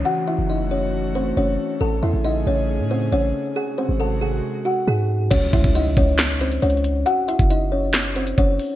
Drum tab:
CC |------------------------------------------------|------------------------------------------------|------------------------------------------------|x-----------------------------------------------|
HH |------------------------------------------------|------------------------------------------------|------------------------------------------------|x-----------x-----------x-----x--x--x-x-x-x-----|
CP |------------------------------------------------|------------------------------------------------|------------------------------------------------|------------------------x-----------------------|
SD |------------------------------------------------|------------------------------------------------|------------------------------------------------|------------------------o-----------------------|
BD |------------------------------------------------|------------------------------------------------|------------------------------------------------|o-----o--o--------o-----------------------------|

CC |------------------------------------------------|
HH |x-----x-----x-----------x-----x--x--x-----o-----|
CP |------------------------x-----------------------|
SD |------------------------o-----------------------|
BD |---------o--------------------------o-----------|